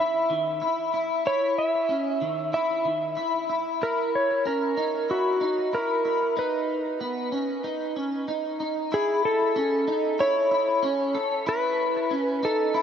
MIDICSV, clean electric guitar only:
0, 0, Header, 1, 2, 480
1, 0, Start_track
1, 0, Tempo, 638298
1, 946, Time_signature, 4, 2, 24, 8
1, 9644, End_track
2, 0, Start_track
2, 0, Title_t, "Clean electric guitar"
2, 0, Program_c, 0, 27
2, 0, Note_on_c, 0, 64, 82
2, 225, Note_off_c, 0, 64, 0
2, 225, Note_on_c, 0, 51, 66
2, 463, Note_on_c, 0, 64, 68
2, 465, Note_off_c, 0, 51, 0
2, 696, Note_off_c, 0, 64, 0
2, 705, Note_on_c, 0, 64, 69
2, 935, Note_off_c, 0, 64, 0
2, 944, Note_on_c, 0, 64, 82
2, 1420, Note_on_c, 0, 61, 73
2, 1425, Note_off_c, 0, 64, 0
2, 1663, Note_off_c, 0, 61, 0
2, 1665, Note_on_c, 0, 51, 66
2, 1904, Note_on_c, 0, 64, 81
2, 1905, Note_off_c, 0, 51, 0
2, 2142, Note_on_c, 0, 51, 61
2, 2145, Note_off_c, 0, 64, 0
2, 2382, Note_on_c, 0, 64, 73
2, 2384, Note_off_c, 0, 51, 0
2, 2619, Note_off_c, 0, 64, 0
2, 2628, Note_on_c, 0, 64, 68
2, 2860, Note_off_c, 0, 64, 0
2, 2869, Note_on_c, 0, 64, 87
2, 3347, Note_off_c, 0, 64, 0
2, 3349, Note_on_c, 0, 61, 77
2, 3585, Note_off_c, 0, 61, 0
2, 3588, Note_on_c, 0, 63, 70
2, 3827, Note_off_c, 0, 63, 0
2, 3831, Note_on_c, 0, 64, 81
2, 4068, Note_on_c, 0, 63, 65
2, 4069, Note_off_c, 0, 64, 0
2, 4307, Note_off_c, 0, 63, 0
2, 4309, Note_on_c, 0, 64, 65
2, 4542, Note_off_c, 0, 64, 0
2, 4551, Note_on_c, 0, 64, 70
2, 4788, Note_off_c, 0, 64, 0
2, 4788, Note_on_c, 0, 63, 91
2, 5266, Note_off_c, 0, 63, 0
2, 5269, Note_on_c, 0, 59, 70
2, 5502, Note_off_c, 0, 59, 0
2, 5505, Note_on_c, 0, 61, 68
2, 5743, Note_off_c, 0, 61, 0
2, 5746, Note_on_c, 0, 63, 76
2, 5985, Note_off_c, 0, 63, 0
2, 5988, Note_on_c, 0, 61, 60
2, 6223, Note_off_c, 0, 61, 0
2, 6226, Note_on_c, 0, 63, 71
2, 6458, Note_off_c, 0, 63, 0
2, 6467, Note_on_c, 0, 63, 67
2, 6707, Note_off_c, 0, 63, 0
2, 6707, Note_on_c, 0, 64, 97
2, 7186, Note_off_c, 0, 64, 0
2, 7187, Note_on_c, 0, 61, 88
2, 7423, Note_off_c, 0, 61, 0
2, 7426, Note_on_c, 0, 63, 78
2, 7665, Note_on_c, 0, 64, 89
2, 7666, Note_off_c, 0, 63, 0
2, 7896, Note_off_c, 0, 64, 0
2, 7905, Note_on_c, 0, 64, 71
2, 8141, Note_on_c, 0, 61, 82
2, 8146, Note_off_c, 0, 64, 0
2, 8381, Note_on_c, 0, 69, 82
2, 8384, Note_off_c, 0, 61, 0
2, 8619, Note_off_c, 0, 69, 0
2, 8623, Note_on_c, 0, 64, 103
2, 9104, Note_off_c, 0, 64, 0
2, 9104, Note_on_c, 0, 61, 89
2, 9344, Note_off_c, 0, 61, 0
2, 9347, Note_on_c, 0, 63, 83
2, 9584, Note_on_c, 0, 64, 94
2, 9586, Note_off_c, 0, 63, 0
2, 9644, Note_off_c, 0, 64, 0
2, 9644, End_track
0, 0, End_of_file